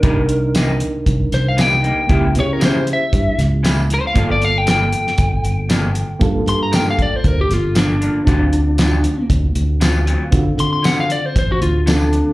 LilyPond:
<<
  \new Staff \with { instrumentName = "Lead electric guitar" } { \time 4/4 \key g \minor \tempo 4 = 117 bes'4. r4 c''16 f''16 g''4~ | g''8 cis''16 ais'16 c''8 e''4 r4 c''16 f''16~ | f''16 d''16 f''16 g''16 g''2. | r8 c'''16 bes''16 g''16 f''16 d''16 c''16 bes'16 g'16 f'8 d'4~ |
d'2 r2 | r8 c'''16 c'''16 fis''16 eis''16 d''16 c''16 c''16 fis'16 eis'8 d'4 | }
  \new Staff \with { instrumentName = "Reed electric piano" } { \time 4/4 \key g \minor <d' ees' bes'>1 | <ais e' g'>1 | <bes f' a'>1 | <bes f' a'>1 |
<c' eis' fis'>1 | <c' eis' fis'>2. <c' eis' a'>4 | }
  \new Staff \with { instrumentName = "Clean electric guitar" } { \time 4/4 \key g \minor <c g bes ees'>8 r8 <c g bes ees'>8 r4. <c g bes ees'>8 <g bes ees'>8 | <cis g ais e'>8 r8 <cis g ais e'>8 r4. <cis g ais e'>8 r8 | <g, f bes d'>8 r8 <g, f bes d'>8 r4. <g, f bes d'>8 r8 | r4 <g, f bes d'>8 r4. <g, f bes d'>8 <f bes d'>8 |
<d fis c' eis'>8 r8 <d fis c' eis'>8 r4. <d fis c' eis'>8 <fis c' eis'>8 | r4 <d fis c' eis'>8 r4. <d fis c' eis'>8 r8 | }
  \new Staff \with { instrumentName = "Fingered electric bass" } { \clef bass \time 4/4 \key g \minor c,2 c,8 c,4. | cis,8 cis4. g,8 cis,4. | g,,2 g,,8 g,,4. | g,8 g,4. d,8 g,,4. |
d,2 d,8 d,4. | d8 d4. a,,8 d,4. | }
  \new DrumStaff \with { instrumentName = "Drums" } \drummode { \time 4/4 <hh bd>8 hh8 <hh sn tamb>8 hh8 <hh bd>8 <hh sn>8 <hh sn tamb>8 hh8 | <hh bd>8 hh8 <hh sn tamb>8 hh8 <hh bd>8 <hh sn>8 <hh sn tamb>8 hh8 | <hh bd>8 hh8 <hh sn tamb>8 hh16 sn16 <hh bd>8 hh8 <hh sn tamb>8 hh8 | <hh bd>8 hh8 <hh sn tamb>8 <hh bd>8 <hh bd>8 <hh sn>8 <hh sn tamb>8 hh8 |
<hh bd>8 hh8 <hh sn tamb>8 hh8 <hh bd>8 hh8 <hh sn tamb>8 hh8 | <hh bd>8 hh8 <hh sn tamb>8 hh8 <hh bd>8 hh8 <hh sn tamb>8 hh8 | }
>>